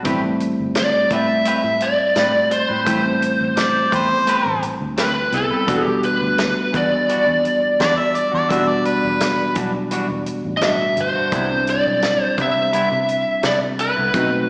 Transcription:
0.03 fingered electric bass A1, tine electric piano G3 A3 C4 E4, clean electric guitar A3 C4 G4 B4, kick, closed hi-hat
0.23 muted clean electric guitar stroke
0.40 muted clean electric guitar stroke, closed hi-hat
0.60 fingered electric bass G1
0.75 lead electric guitar D5, muted clean electric guitar stroke, snare, closed hi-hat
1.10 fingered electric bass A2, clean electric guitar A3 C4 G4 B4, lead electric guitar E5, kick, closed hi-hat
1.29 muted clean electric guitar stroke
1.45 clean electric guitar A3 C4 G4 B4, lead electric guitar E5, closed hi-hat
1.64 fingered electric bass A2, muted clean electric guitar stroke
1.80 lead electric guitar D5, muted clean electric guitar stroke, closed hi-hat
2.15 fingered electric bass A2, clean electric guitar A3 C4 G4 B4, snare, closed hi-hat
2.34 muted clean electric guitar stroke
2.51 lead electric guitar C5, muted clean electric guitar stroke, closed hi-hat
2.69 fingered electric bass A2, clean electric guitar C4 G4 B4
2.85 fingered electric bass A1, tine electric piano G3 A3 C4 E4, clean electric guitar A3 C4 G4 B4, kick, closed hi-hat
3.05 muted clean electric guitar stroke
3.21 muted clean electric guitar stroke, closed hi-hat
3.41 fingered electric bass A1
3.56 harmonica D5, muted clean electric guitar stroke, snare, closed hi-hat
3.91 fingered electric bass E2, clean electric guitar A3 C4 G4 B4, kick, closed hi-hat
3.95 harmonica C5
4.10 muted clean electric guitar stroke
4.27 clean electric guitar A3 C4 G4 B4, closed hi-hat
4.46 fingered electric bass A1, muted clean electric guitar stroke
4.62 muted clean electric guitar stroke, closed hi-hat
4.81 fingered electric bass D2
4.97 clean electric guitar A3 C4 G4 B4, lead electric guitar B4, snare, closed hi-hat
5.16 muted clean electric guitar stroke
5.32 fingered electric bass C2, tine electric piano G3 B3 C4 E4, lead electric guitar A4, muted clean electric guitar stroke, closed hi-hat
5.50 clean electric guitar C4 G4 B4
5.67 fingered electric bass E1, clean electric guitar E3 G3 D4 F#4, tine electric piano G3 B3 D4 F#4, kick, closed hi-hat
5.83 lead electric guitar G4, muted clean electric guitar stroke
6.03 lead electric guitar B4, muted clean electric guitar stroke, closed hi-hat
6.21 fingered electric bass D2
6.38 muted clean electric guitar stroke, snare, closed hi-hat
6.73 fingered electric bass E2, clean electric guitar E3 G3 D4 F#4, lead electric guitar D5, kick, closed hi-hat
6.92 muted clean electric guitar stroke
7.09 clean electric guitar E3 G3 D4 F#4, closed hi-hat
7.27 fingered electric bass E2, muted clean electric guitar stroke
7.44 muted clean electric guitar stroke, closed hi-hat
7.79 fingered electric bass E2, clean electric guitar E3 G3 D4 F#4, harmonica D5, snare, closed hi-hat
7.97 harmonica E5, muted clean electric guitar stroke
8.14 harmonica D5, muted clean electric guitar stroke, closed hi-hat
8.32 fingered electric bass E2, clean electric guitar G3 D4 F#4, harmonica D5
8.49 fingered electric bass E1, clean electric guitar E3 G3 D4 F#4, tine electric piano G3 B3 D4 F#4, harmonica E5, kick, closed hi-hat
8.68 harmonica D5, muted clean electric guitar stroke
8.85 harmonica B4, muted clean electric guitar stroke, closed hi-hat
9.05 fingered electric bass E1
9.20 muted clean electric guitar stroke, snare, closed hi-hat
9.54 fingered electric bass B1, clean electric guitar E3 G3 D4 F#4, kick, closed hi-hat
9.75 muted clean electric guitar stroke
9.91 clean electric guitar E3 G3 D4 F#4, closed hi-hat
10.10 fingered electric bass E1, muted clean electric guitar stroke
10.26 muted clean electric guitar stroke, closed hi-hat
10.45 fingered electric bass A1
10.57 tine electric piano G3, lead electric guitar D#5
10.61 tine electric piano B2 D4 F#4, clean electric guitar E3 G3 D4 F#4, snare, closed hi-hat
10.66 lead electric guitar E5
10.80 muted clean electric guitar stroke
10.97 fingered electric bass G1, lead electric guitar C5, muted clean electric guitar stroke, closed hi-hat
11.15 clean electric guitar G3 D4 F#4
11.32 fingered electric bass C2, clean electric guitar C3 G3 B3 E4, tine electric piano G3 C4 D4 E4, kick, closed hi-hat
11.51 muted clean electric guitar stroke
11.67 lead electric guitar D5, muted clean electric guitar stroke, closed hi-hat
11.86 fingered electric bass B1
12.02 muted clean electric guitar stroke, snare, closed hi-hat
12.23 lead electric guitar C5
12.38 clean electric guitar C3 G3 B3 E4, fingered electric bass C3, kick, closed hi-hat
12.42 lead electric guitar E5
12.56 muted clean electric guitar stroke
12.72 clean electric guitar C3 G3 B3 E4, closed hi-hat
12.91 fingered electric bass C3, muted clean electric guitar stroke
13.08 muted clean electric guitar stroke, closed hi-hat
13.43 clean electric guitar C3 G3 B3 E4, fingered electric bass C3, lead electric guitar D5, snare, closed hi-hat
13.62 muted clean electric guitar stroke
13.78 lead electric guitar B4, muted clean electric guitar stroke, closed hi-hat
13.96 fingered electric bass C2, clean electric guitar G3 B3 E4
14.13 fingered electric bass B1, clean electric guitar B2 A3 C4 D#4, tine electric piano A3 C4 D#4 F#4, kick, closed hi-hat
14.32 muted clean electric guitar stroke

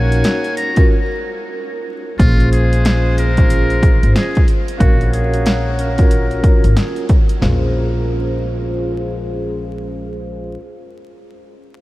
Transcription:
Already playing: upright bass A#1, saxophone section A#3 F#4 C#5, vibraphone C#4 D#4 F#4 A#4, muted trumpet G#5
0.12 closed hi-hat
0.24 snare, closed hi-hat
0.44 closed hi-hat
0.57 muted trumpet A#5, closed hi-hat
0.75 vibraphone C#4 F4 F#4 A#4, kick, closed hi-hat
2.19 upright bass A#1, saxophone section G#3 F4 C5, vibraphone C#4 F4 G#4 C5, muted trumpet F4, kick, closed hi-hat
2.40 closed hi-hat
2.52 muted trumpet G#4, closed hi-hat
2.73 closed hi-hat
2.85 snare, closed hi-hat
3.18 muted trumpet A#4, closed hi-hat
3.37 vibraphone C#4 F4 G#4 C5, kick, closed hi-hat
3.50 closed hi-hat
3.70 closed hi-hat
3.83 kick, closed hi-hat
4.03 upright bass G#1, closed hi-hat
4.16 muted trumpet G#4, snare, closed hi-hat
4.35 kick, closed hi-hat
4.48 closed hi-hat
4.68 closed hi-hat
4.77 upright bass A#1, saxophone section A#3 F#4 C#5, vibraphone C#4 F#4 A#4 F5, muted trumpet F#4, kick, closed hi-hat
5.01 closed hi-hat
5.13 muted trumpet G#4, closed hi-hat
5.34 closed hi-hat
5.46 snare, closed hi-hat
5.79 muted trumpet A#4, closed hi-hat
5.96 vibraphone C#4 F4 F#4 A#4, kick, closed hi-hat
6.11 closed hi-hat
6.31 closed hi-hat
6.44 kick, closed hi-hat
6.64 upright bass G#1, closed hi-hat
6.77 muted trumpet G#4, snare, closed hi-hat
6.96 closed hi-hat
7.09 kick, closed hi-hat
7.29 closed hi-hat
7.41 upright bass A#1, saxophone section G#3 F4 C5, vibraphone C#4 F4 G#4 C5, muted trumpet A#4, snare, floor tom

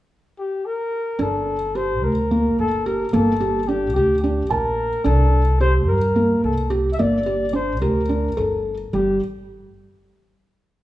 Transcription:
0.39 flugelhorn G4
0.66 flugelhorn A#4
1.19 upright bass G1, felt piano D4, flugelhorn A4
1.75 felt piano G4, flugelhorn C5
2.03 upright bass D2, flugelhorn A#4
2.31 felt piano A#3
2.59 upright bass G1, flugelhorn A4
2.86 felt piano G4, flugelhorn A#4
3.13 upright bass G1, felt piano A#3, flugelhorn A4
3.40 felt piano G4
3.68 felt piano D4, flugelhorn G4
3.95 upright bass D2, flugelhorn G4, felt piano G4
4.22 felt piano D4, flugelhorn G4
4.50 upright bass A#1, flugelhorn A#4, felt piano A5
5.04 upright bass C2, felt piano D4, flugelhorn A4
5.61 felt piano G4, flugelhorn C5
5.88 upright bass G2, flugelhorn A#4
6.16 felt piano A#3
6.44 upright bass C2, flugelhorn A4
6.70 felt piano G4
6.93 flugelhorn E5
6.99 upright bass G1, felt piano A#3, flugelhorn D5
7.26 felt piano G4
7.53 felt piano D4, flugelhorn C5
7.81 upright bass D2, felt piano G4, flugelhorn A#4
8.09 felt piano D4
8.37 upright bass G1, felt piano A4
8.93 upright bass G1, felt piano G3, flugelhorn G4

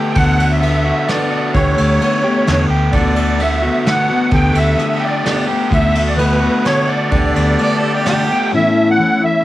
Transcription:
Already playing: steel-string acoustic guitar D3 A3 B3 G4, overdriven electric guitar D3 A3 G4
0.11 accordion G5
0.15 fingered electric bass D2, steel-string acoustic guitar D3 A3 B3 F#4, accordion F#5, kick, ride
0.39 overdriven electric guitar A3, ride
0.51 accordion E5
0.59 steel-string acoustic guitar D3 A3 B3, accordion E5, ride
0.64 steel-string acoustic guitar F#4
0.85 overdriven electric guitar F#4
1.07 steel-string acoustic guitar D3 A3 B3 F#4, accordion D5, snare, ride
1.31 overdriven electric guitar F#4
1.54 fingered electric bass D2, steel-string acoustic guitar D3 A3 B3 G4, accordion C#5, kick, ride
1.78 fingered electric bass D2, overdriven electric guitar A3, ride
2.00 steel-string acoustic guitar D3 A3 B3 G4, ride
2.24 steel-string acoustic guitar A3 B3 G4
2.47 fingered electric bass E2, steel-string acoustic guitar D3 A3 B3 G4, snare, ride
2.69 fingered electric bass D2, overdriven electric guitar G4
2.92 fingered electric bass D2, steel-string acoustic guitar D3 A3 B3 F#4, accordion D5, kick, ride
3.16 overdriven electric guitar A3, ride
3.39 steel-string acoustic guitar D3 A3 B3 F#4, accordion E5, ride
3.62 steel-string acoustic guitar A3 B3 F#4
3.85 steel-string acoustic guitar D3 A3 B3 F#4, accordion F#5, snare, ride
4.09 steel-string acoustic guitar A3 B3 F#4
4.31 fingered electric bass D2, steel-string acoustic guitar D3 A3 B3 G4, accordion G5, kick, ride
4.53 fingered electric bass D2, overdriven electric guitar A3, ride
4.57 accordion E5
4.77 steel-string acoustic guitar D3 A3 B3 G4, ride
5.00 overdriven electric guitar G4
5.04 accordion D5
5.23 steel-string acoustic guitar D3 A3 B3 G4, snare, ride
5.46 steel-string acoustic guitar A3 B3 G4
5.70 fingered electric bass D2, steel-string acoustic guitar D3 A3 B3 F#4, accordion E5, kick, ride
5.95 overdriven electric guitar A3, ride
6.07 accordion D5
6.16 steel-string acoustic guitar D3 A3 B3 F#4, accordion B4, ride
6.41 steel-string acoustic guitar A3 B3 F#4
6.65 steel-string acoustic guitar D3 A3 B3 F#4, accordion C#5, snare, ride
6.87 overdriven electric guitar F#4, accordion D5
7.11 fingered electric bass D2, steel-string acoustic guitar D3 A3 B3 G4, kick, ride
7.36 fingered electric bass D2, overdriven electric guitar A3, ride
7.59 steel-string acoustic guitar D3 A3 B3 G4, harmonica D5, ride
7.79 harmonica A4
7.83 overdriven electric guitar G4
7.94 harmonica G4
8.05 steel-string acoustic guitar D3 A3 B3 G4, harmonica G4, snare, ride
8.29 steel-string acoustic guitar A3 B3 G4, accordion G5
8.51 steel-string acoustic guitar A2 E3 A3 C#4 E4, tonewheel organ C#4 E4 A4
8.55 accordion E5
8.90 accordion F#5
8.98 steel-string acoustic guitar E3 A3 C#4 E4
9.20 steel-string acoustic guitar A3 C#4 E4
9.24 accordion E5

